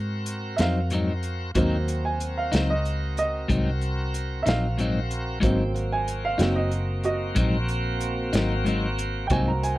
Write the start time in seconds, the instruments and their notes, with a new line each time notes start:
Already playing: fingered electric bass G#2, tonewheel organ C4 F#4 A#4
0.26 closed hi-hat
0.56 fingered electric bass F2, clean electric guitar D#4, upright piano E5, snare, closed hi-hat
0.61 clean electric guitar F#3 C4, upright piano F5
0.90 clean electric guitar G#2 F#3 C4, closed hi-hat
0.94 clean electric guitar D#4
1.23 closed hi-hat
1.55 fingered electric bass D#2, clean electric guitar G#2 F#3 C4 D#4, upright piano F#3 A#3 C4, tonewheel organ C4 F#4 A#4, kick, closed hi-hat
1.88 closed hi-hat
2.05 upright piano G#5
2.20 closed hi-hat
2.37 upright piano F5
2.52 fingered electric bass C#2, clean electric guitar F#3 C4 D#4, snare, closed hi-hat
2.70 upright piano D#5
2.85 closed hi-hat
3.17 upright piano D#5, closed hi-hat
3.48 fingered electric bass C2, clean electric guitar G#2 F#3 C4 D#4, kick, closed hi-hat
3.81 closed hi-hat
4.14 closed hi-hat
4.43 clean electric guitar D#4, upright piano E5, closed hi-hat
4.47 fingered electric bass A#1, clean electric guitar F#3 C4, upright piano F5, snare
4.78 clean electric guitar G#2 F#3 C4 D#4, closed hi-hat
5.11 closed hi-hat
5.40 fingered electric bass G#1, clean electric guitar G#2 F#3 C4 D#4, tonewheel organ C#3 C4 G5, upright piano F#3 A#3 C4, kick, closed hi-hat
5.74 tonewheel organ A#3 C4 F#4, closed hi-hat
5.93 upright piano G#5
6.08 closed hi-hat
6.25 upright piano F5
6.38 fingered electric bass F#1, upright piano F#3 A#3 C4, clean electric guitar F#3 C4 D#4, snare, closed hi-hat
6.56 upright piano D#5
6.71 closed hi-hat
7.03 upright piano F#4 D#5, closed hi-hat
7.35 fingered electric bass A#1, clean electric guitar G#2 F#3 C4 D#4, kick, closed hi-hat
7.68 closed hi-hat
8.00 closed hi-hat
8.33 fingered electric bass G#1, clean electric guitar F#3 C4 D#4, snare, closed hi-hat
8.65 clean electric guitar G#2 F#3 C4 D#4, closed hi-hat
8.98 closed hi-hat
9.27 fingered electric bass C2, clean electric guitar G#2 F#3, upright piano A#3 F#4 G5, tonewheel organ A#3 F#4, kick, closed hi-hat
9.31 tonewheel organ C4, upright piano C4 G#5, clean electric guitar C4 D#4
9.48 upright piano A#5
9.63 upright piano G#5, closed hi-hat